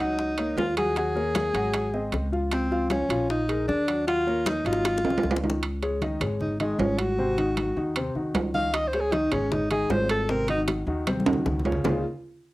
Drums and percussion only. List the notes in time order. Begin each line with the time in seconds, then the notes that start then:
0.18 high bongo, high conga
0.38 high bongo, high conga, high timbale
0.58 high bongo, low bongo, high conga, low timbale
0.77 high bongo, high conga, high timbale
0.96 high bongo, high conga, high timbale
1.15 high bongo, high conga
1.35 high bongo, high conga, high timbale
1.54 high conga, high timbale
1.74 high bongo, high conga, high timbale
1.93 high bongo, high conga
2.12 high bongo, low bongo, high conga, high timbale
2.33 high bongo
2.51 high bongo, high conga, high timbale
2.71 high bongo, high conga
2.90 high bongo, high conga, high timbale
3.10 high timbale
3.29 high bongo, high conga
3.48 high bongo, high conga, high timbale
3.68 high bongo, low bongo, high conga
3.88 high bongo, high timbale
4.07 high bongo, high conga, high timbale
4.27 high bongo, high conga
4.46 high bongo, high conga, high timbale
4.66 high conga, high timbale
4.73 high bongo
4.85 high bongo, high conga, high timbale
4.98 low bongo
5.04 high conga, high timbale
5.10 low bongo
5.18 low timbale
5.23 low bongo, high conga
5.31 low timbale
5.36 low bongo
5.44 low timbale
5.50 low bongo
5.62 high conga, high timbale
5.82 high conga, high timbale
6.02 high conga, high timbale, low timbale
6.21 high conga, low conga, high timbale
6.41 high conga, low conga
6.60 high conga, high timbale
6.79 high conga, low timbale
6.99 high conga, high timbale
7.18 high conga
7.37 high conga, high timbale
7.57 high conga, high timbale, low timbale
7.76 high conga
7.96 high conga, high timbale
8.15 high conga
8.35 high conga, high timbale, low timbale
8.54 high conga
8.74 high bongo, high conga, high timbale
8.93 high bongo, high conga, high timbale
9.12 high bongo, high conga, high timbale, low timbale
9.32 high conga, low conga, high timbale
9.52 high bongo, high conga, low conga
9.71 high bongo, high conga, high timbale
9.90 high bongo, low bongo, high conga, low timbale
10.09 high bongo, high timbale
10.29 high bongo, high conga
10.48 high bongo, high conga, high timbale
10.68 high bongo, high conga, high timbale, low timbale
10.87 high conga
11.07 high bongo, high conga, high timbale
11.20 high conga
11.26 high bongo, high timbale
11.33 low conga
11.46 high bongo, low bongo, low conga
11.59 low conga
11.65 high bongo, low timbale
11.72 low conga
11.84 low bongo, low conga, low timbale